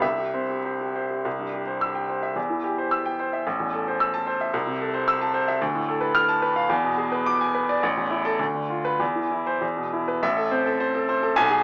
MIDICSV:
0, 0, Header, 1, 2, 480
1, 0, Start_track
1, 0, Key_signature, 0, "major"
1, 0, Tempo, 618557
1, 12, Time_signature, 2, 2, 24, 8
1, 972, Tempo, 561798
1, 1452, Tempo, 542005
1, 4815, Key_signature, 0, "minor"
1, 5292, Tempo, 559701
1, 6732, Tempo, 585938
1, 7692, Tempo, 619195
1, 8652, Tempo, 566038
1, 9833, End_track
2, 0, Start_track
2, 0, Title_t, "Grand piano"
2, 0, Program_c, 0, 0
2, 0, Control_c, 0, 64, 127
2, 10, Note_on_c, 0, 36, 64
2, 14, Note_on_c, 0, 76, 77
2, 26, Control_c, 0, 64, 0
2, 140, Note_on_c, 0, 67, 46
2, 166, Control_c, 0, 64, 127
2, 211, Note_off_c, 0, 76, 0
2, 262, Note_on_c, 0, 60, 44
2, 264, Note_on_c, 0, 72, 48
2, 335, Note_off_c, 0, 67, 0
2, 385, Note_on_c, 0, 67, 45
2, 455, Note_off_c, 0, 60, 0
2, 456, Note_off_c, 0, 72, 0
2, 502, Note_on_c, 0, 72, 47
2, 576, Note_off_c, 0, 67, 0
2, 625, Note_on_c, 0, 67, 42
2, 695, Note_off_c, 0, 72, 0
2, 740, Note_on_c, 0, 72, 46
2, 815, Note_off_c, 0, 67, 0
2, 856, Note_on_c, 0, 67, 42
2, 927, Note_off_c, 0, 72, 0
2, 943, Note_off_c, 0, 36, 0
2, 967, Note_on_c, 0, 36, 62
2, 970, Note_off_c, 0, 67, 0
2, 989, Control_c, 0, 64, 0
2, 1089, Note_on_c, 0, 43, 46
2, 1130, Control_c, 0, 64, 127
2, 1212, Note_on_c, 0, 67, 48
2, 1283, Note_off_c, 0, 43, 0
2, 1327, Note_on_c, 0, 72, 51
2, 1404, Note_off_c, 0, 67, 0
2, 1450, Note_on_c, 0, 88, 75
2, 1524, Note_off_c, 0, 72, 0
2, 1571, Note_on_c, 0, 79, 53
2, 1649, Note_off_c, 0, 88, 0
2, 1702, Note_on_c, 0, 72, 51
2, 1770, Note_off_c, 0, 79, 0
2, 1820, Note_on_c, 0, 76, 52
2, 1896, Note_off_c, 0, 72, 0
2, 1910, Note_off_c, 0, 36, 0
2, 1935, Note_on_c, 0, 40, 69
2, 1943, Note_off_c, 0, 76, 0
2, 1960, Control_c, 0, 64, 0
2, 2060, Note_on_c, 0, 52, 52
2, 2126, Control_c, 0, 64, 127
2, 2182, Note_on_c, 0, 67, 55
2, 2258, Note_off_c, 0, 52, 0
2, 2310, Note_on_c, 0, 72, 53
2, 2379, Note_off_c, 0, 67, 0
2, 2426, Note_on_c, 0, 88, 78
2, 2502, Note_off_c, 0, 72, 0
2, 2552, Note_on_c, 0, 79, 57
2, 2620, Note_off_c, 0, 88, 0
2, 2676, Note_on_c, 0, 72, 58
2, 2743, Note_off_c, 0, 79, 0
2, 2796, Note_on_c, 0, 76, 55
2, 2865, Note_off_c, 0, 72, 0
2, 2877, Note_off_c, 0, 40, 0
2, 2913, Note_off_c, 0, 76, 0
2, 2917, Note_on_c, 0, 33, 71
2, 2927, Control_c, 0, 64, 0
2, 3031, Note_on_c, 0, 40, 54
2, 3090, Control_c, 0, 64, 127
2, 3155, Note_on_c, 0, 69, 57
2, 3221, Note_off_c, 0, 40, 0
2, 3280, Note_on_c, 0, 72, 54
2, 3342, Note_off_c, 0, 69, 0
2, 3390, Note_on_c, 0, 88, 81
2, 3464, Note_off_c, 0, 72, 0
2, 3509, Note_on_c, 0, 81, 64
2, 3579, Note_off_c, 0, 88, 0
2, 3624, Note_on_c, 0, 72, 63
2, 3698, Note_off_c, 0, 81, 0
2, 3751, Note_on_c, 0, 76, 60
2, 3816, Note_off_c, 0, 72, 0
2, 3839, Note_off_c, 0, 33, 0
2, 3863, Note_on_c, 0, 36, 77
2, 3867, Note_off_c, 0, 76, 0
2, 3879, Control_c, 0, 64, 0
2, 3982, Note_on_c, 0, 48, 57
2, 4014, Control_c, 0, 64, 127
2, 4108, Note_on_c, 0, 69, 62
2, 4174, Note_off_c, 0, 48, 0
2, 4218, Note_on_c, 0, 72, 66
2, 4296, Note_off_c, 0, 69, 0
2, 4342, Note_on_c, 0, 88, 94
2, 4409, Note_off_c, 0, 72, 0
2, 4463, Note_on_c, 0, 81, 65
2, 4530, Note_off_c, 0, 88, 0
2, 4572, Note_on_c, 0, 72, 69
2, 4650, Note_off_c, 0, 81, 0
2, 4699, Note_on_c, 0, 76, 68
2, 4765, Note_off_c, 0, 72, 0
2, 4786, Note_off_c, 0, 36, 0
2, 4817, Note_off_c, 0, 76, 0
2, 4820, Note_on_c, 0, 38, 85
2, 4831, Control_c, 0, 64, 0
2, 4940, Note_on_c, 0, 45, 64
2, 4979, Control_c, 0, 64, 127
2, 5061, Note_on_c, 0, 69, 64
2, 5128, Note_off_c, 0, 45, 0
2, 5168, Note_on_c, 0, 71, 67
2, 5248, Note_off_c, 0, 69, 0
2, 5290, Note_on_c, 0, 89, 98
2, 5359, Note_off_c, 0, 71, 0
2, 5409, Note_on_c, 0, 81, 70
2, 5477, Note_off_c, 0, 89, 0
2, 5525, Note_on_c, 0, 71, 73
2, 5596, Note_off_c, 0, 81, 0
2, 5644, Note_on_c, 0, 77, 68
2, 5715, Note_off_c, 0, 71, 0
2, 5737, Note_off_c, 0, 38, 0
2, 5759, Note_on_c, 0, 40, 90
2, 5763, Note_off_c, 0, 77, 0
2, 5778, Control_c, 0, 64, 0
2, 5884, Note_on_c, 0, 47, 62
2, 5927, Control_c, 0, 64, 127
2, 6002, Note_on_c, 0, 68, 67
2, 6078, Note_off_c, 0, 47, 0
2, 6122, Note_on_c, 0, 71, 68
2, 6198, Note_off_c, 0, 68, 0
2, 6247, Note_on_c, 0, 86, 100
2, 6318, Note_off_c, 0, 71, 0
2, 6371, Note_on_c, 0, 80, 72
2, 6441, Note_off_c, 0, 86, 0
2, 6489, Note_on_c, 0, 71, 66
2, 6563, Note_off_c, 0, 80, 0
2, 6614, Note_on_c, 0, 74, 68
2, 6683, Note_off_c, 0, 71, 0
2, 6701, Note_off_c, 0, 40, 0
2, 6733, Note_off_c, 0, 74, 0
2, 6734, Note_on_c, 0, 33, 86
2, 6746, Control_c, 0, 64, 0
2, 6851, Note_on_c, 0, 40, 59
2, 6892, Control_c, 0, 64, 127
2, 6956, Note_on_c, 0, 64, 66
2, 7038, Note_off_c, 0, 40, 0
2, 7077, Note_on_c, 0, 69, 86
2, 7150, Note_off_c, 0, 64, 0
2, 7190, Note_off_c, 0, 33, 0
2, 7193, Note_on_c, 0, 38, 76
2, 7199, Note_off_c, 0, 69, 0
2, 7218, Control_c, 0, 64, 0
2, 7319, Note_on_c, 0, 50, 53
2, 7362, Control_c, 0, 64, 127
2, 7443, Note_on_c, 0, 65, 56
2, 7515, Note_off_c, 0, 50, 0
2, 7565, Note_on_c, 0, 71, 75
2, 7641, Note_off_c, 0, 65, 0
2, 7672, Note_off_c, 0, 38, 0
2, 7687, Note_on_c, 0, 40, 72
2, 7691, Note_off_c, 0, 71, 0
2, 7706, Control_c, 0, 64, 0
2, 7811, Note_on_c, 0, 52, 51
2, 7843, Control_c, 0, 64, 127
2, 7931, Note_on_c, 0, 64, 52
2, 8004, Note_off_c, 0, 52, 0
2, 8051, Note_on_c, 0, 72, 68
2, 8124, Note_off_c, 0, 64, 0
2, 8153, Note_off_c, 0, 40, 0
2, 8165, Note_on_c, 0, 40, 64
2, 8172, Note_off_c, 0, 72, 0
2, 8187, Control_c, 0, 64, 0
2, 8284, Note_on_c, 0, 47, 49
2, 8314, Control_c, 0, 64, 127
2, 8412, Note_on_c, 0, 64, 54
2, 8482, Note_off_c, 0, 47, 0
2, 8528, Note_on_c, 0, 71, 71
2, 8604, Note_off_c, 0, 64, 0
2, 8633, Note_off_c, 0, 40, 0
2, 8643, Note_on_c, 0, 33, 84
2, 8644, Note_on_c, 0, 76, 93
2, 8648, Note_off_c, 0, 71, 0
2, 8667, Control_c, 0, 64, 0
2, 8762, Note_on_c, 0, 69, 69
2, 8793, Control_c, 0, 64, 127
2, 8847, Note_off_c, 0, 76, 0
2, 8884, Note_on_c, 0, 60, 65
2, 8885, Note_on_c, 0, 72, 67
2, 8968, Note_off_c, 0, 69, 0
2, 9007, Note_on_c, 0, 69, 68
2, 9088, Note_off_c, 0, 60, 0
2, 9088, Note_off_c, 0, 72, 0
2, 9129, Note_on_c, 0, 72, 79
2, 9208, Note_off_c, 0, 69, 0
2, 9252, Note_on_c, 0, 69, 75
2, 9327, Note_off_c, 0, 72, 0
2, 9371, Note_on_c, 0, 72, 75
2, 9447, Note_off_c, 0, 69, 0
2, 9490, Note_on_c, 0, 69, 75
2, 9565, Note_off_c, 0, 72, 0
2, 9584, Note_off_c, 0, 33, 0
2, 9604, Note_on_c, 0, 35, 99
2, 9605, Note_on_c, 0, 80, 126
2, 9613, Note_off_c, 0, 69, 0
2, 9633, Control_c, 0, 64, 0
2, 9728, Note_on_c, 0, 68, 83
2, 9793, Control_c, 0, 64, 127
2, 9798, Note_off_c, 0, 80, 0
2, 9833, Note_off_c, 0, 35, 0
2, 9833, Note_off_c, 0, 68, 0
2, 9833, End_track
0, 0, End_of_file